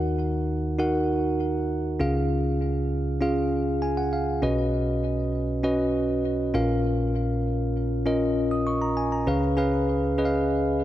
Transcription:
Already playing: D#2 D#3 D#4 F#4 A#4 F#5
0.79 D#4 F#4 A#4 F#5
2.00 C#2 C#3 C#4 F4 G#4 F5
3.21 C#4 F4 G#4 F5
3.82 G#5
3.97 F#5
4.13 F5
4.42 B1 B2 C#4 F#4 B4 D#5
5.63 C#4 F#4 B4 D#5
6.54 A#1 A#2 C#4 F4 A#4 F5
8.06 C#4 F4 A#4 D#5
8.51 D#6
8.67 C#6
8.82 A#5
8.97 G#5
9.12 A#5
9.27 C#2 C#3 C#4 G#4 B4 F5
9.57 C#4 G#4 B4 F5
10.18 C#4 G#4 B4 D#5
10.25 F5

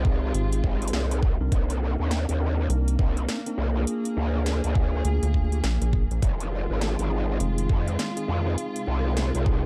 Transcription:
Already playing: C2 C3 G#3 F4
0.05 C4 D#4 F4 G#4, kick
0.34 G#1 C4 D#4 F4 G#4, closed hi-hat
0.52 closed hi-hat
0.64 G#1, kick
0.82 closed hi-hat
0.88 closed hi-hat
0.93 C2 C4 D#4 F4 G#4, snare
1.11 C4 D#4 F4 G#4, closed hi-hat
1.23 kick
1.41 C2 C4 D4 D#4 A#4
1.52 C2 A#3, kick, closed hi-hat
1.70 closed hi-hat
1.99 D#2 C4 D4 D#4 A#4
2.11 snare, closed hi-hat
2.29 D#2, closed hi-hat
2.40 C4 D4 D#4 A#4
2.70 C2 C4 D4 D#4 A#4, closed hi-hat
2.88 closed hi-hat
2.99 C2, kick
3.17 closed hi-hat
3.29 C4 D4 D#4 A#4, snare, closed hi-hat
3.46 C4 D4 D#4 A#4, closed hi-hat
3.58 C2
3.76 A#3 D4 F4 G#4
3.87 G#4, closed hi-hat
4.05 closed hi-hat
4.17 D2
4.35 A#3 D4 F4 G#4
4.46 snare, closed hi-hat
4.64 D2, closed hi-hat
4.75 A#3 D4 F4 G#4, kick
5.05 D2 A#3 D4 F4 G#4, closed hi-hat
5.23 D2, closed hi-hat
5.34 A#3 D4 F4 G#4, kick
5.52 A#3 D4 F4 G4, closed hi-hat
5.64 A#1, snare, closed hi-hat
5.81 A#1, closed hi-hat
5.93 A#3 D4 F4 G#4, kick
6.11 A#1, closed hi-hat
6.22 F1 D#3 G#3 F4, kick, closed hi-hat
6.40 closed hi-hat
6.70 G#1 C4 D#4 F4 G#4
6.81 snare, closed hi-hat
6.99 G#1, closed hi-hat
7.10 C4 D#4 F4 G#4
7.40 F1 C4 D#4 F4 G#4, closed hi-hat
7.58 closed hi-hat
7.69 F2, kick
7.88 closed hi-hat
7.99 C4 D#4 F4 G#4, snare, closed hi-hat
8.17 C4 D#4 F4 G#4, closed hi-hat
8.28 F2
8.46 C4 D#4 F4 G#4
8.58 C3 G#3, closed hi-hat
8.76 closed hi-hat
8.87 C2
9.05 C4 D#4 F4 G#4
9.17 snare, closed hi-hat
9.34 C2, closed hi-hat
9.46 C4 D#4 F4 G#4, kick

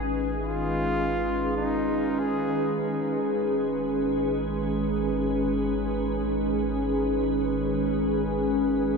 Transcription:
Already playing: G#1 D#3 G#3 C#4 D#4 G#4 B4
0.38 F4
1.57 D#4
2.19 G#4
2.77 G#1

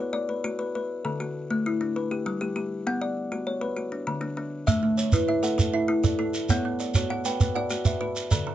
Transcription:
Already playing: C#5
0.00 B4
0.13 D5
0.29 B4
0.44 F#4
0.59 B4
0.75 B4
1.05 D3 A4
1.20 F#4
1.50 A3
1.66 E4
1.81 D4
1.96 B4
2.11 G4
2.26 G3
2.41 G4
2.56 G4
2.87 B3 F#5
3.02 D5
3.32 F#4
3.47 C#5
3.61 B4
3.77 F#4
3.92 D4
4.07 D3
4.21 D4
4.37 D4
4.67 A3 E5, shekere
4.83 A3
4.98 C#5, shekere
5.12 E4 B4, shekere
5.28 E4 E5
5.43 A4 F#5, shekere
5.58 A4, shekere
5.74 E4 E5
5.88 E4
6.04 A4 D5, shekere
6.19 E4 A4
6.34 shekere
6.49 B3 C#5 F#5, shekere
6.65 B3
6.80 D5, shekere
6.94 F#4 C#5, shekere
7.10 F#4 F#5
7.25 B4 G5, shekere
7.40 B4, shekere
7.55 F#4 D5 F#5
7.70 F#4, shekere
7.85 B4 E5, shekere
8.01 F#4 B4
8.16 shekere
8.31 D3 A4 D5, shekere
8.47 D3

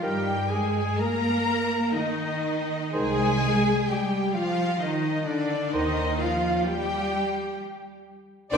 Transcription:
0.01 G2 D#3 G3 G4 A#4 G5
0.49 G#3 G#4 G#5
0.97 A#3 A#4 A#5
1.02 A#3
1.92 D#3 D#4 D#5
2.92 C2 D#3 G#3 G#4 C5 G#5
3.88 G3 G4 G5
4.34 F3 F4 F5
4.79 D#3 D#4 D#5
5.24 D3 D4 D5
5.28 D4
5.70 D#3 D#4 C5 D#5
5.74 D#2 D#3 D#4 D#5
6.18 F3 F4 F5
6.65 G3 G4 G5
8.50 C2 D#3 D4 C5 D5 D6

